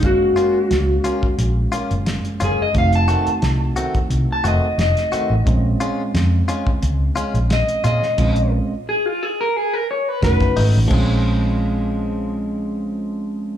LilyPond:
<<
  \new Staff \with { instrumentName = "Clean electric guitar" } { \time 4/4 \key bes \minor \tempo 4 = 88 ges'2. r8 aes'16 ees''16 | f''16 a''4 r4 a''16 ees''8 ees''4~ | ees''4 r2 ees''8 ees''8~ | ees''8 r8 aes'16 f'16 aes'16 bes'16 aes'16 bes'16 des''16 ces''16 b'8 r8 |
r1 | }
  \new Staff \with { instrumentName = "Tine electric piano" } { \time 4/4 \key bes \minor <aes bes des' f''>1 | <a c' ees' ges'>1 | <aes c' des' f'>1 | <aes c' des' f'>4 r2 <a des' dis' fis'>4 |
<aes c' des' f'>1 | }
  \new Staff \with { instrumentName = "Clean electric guitar" } { \time 4/4 \key bes \minor r8 <bes des' f'>8 r8 <bes des' f'>8 r8 <bes des' f'>8 r8 <bes des' f'>8 | r8 <ees a c' ges'>8 r8 <ees a c' ges'>8 r8 <ees a c' ges'>8 r8 <ees a c' ges'>8 | r8 <aes des' f'>8 r8 <aes des' f'>8 r8 <aes des' f'>8 r8 <aes des' f'>8 | r2. r8 <fis a dis'>8 |
<f aes>1 | }
  \new Staff \with { instrumentName = "Fingered electric bass" } { \clef bass \time 4/4 \key bes \minor ges,,8 r8 des,8 r8 bes,,8 r16 ges,,8 r16 ges,,16 r16 | f,,8. r16 c,8 r8 c,16 r16 f,,16 r16 f,,16 r8 a,,16 | bes,,8 r8 f,8 r8 des,8 r16 bes,,8 r16 bes,16 r16 | bes,,8. r2 r16 f,,16 fis,,16 aes,,16 a,,16 |
bes,,1 | }
  \new DrumStaff \with { instrumentName = "Drums" } \drummode { \time 4/4 <hh bd>8 hh8 <hh sn>8 hh16 bd16 hh8 hh16 hh16 <hh sn>16 hh16 hh8 | <hh bd>16 hh16 hh16 hh16 <hh sn>8 hh16 <hh bd>16 hh8 hh8 <hh sn>16 <hh sn>16 hh8 | <hh bd>8 hh8 <hh sn>8 hh16 bd16 hh8 hh16 hh16 <hh sn>16 hh16 hh16 sn16 | <cymc hh bd>16 hh8. r4 r4 <hh bd sn>16 <hh bd sn>16 hho8 |
<cymc bd>4 r4 r4 r4 | }
>>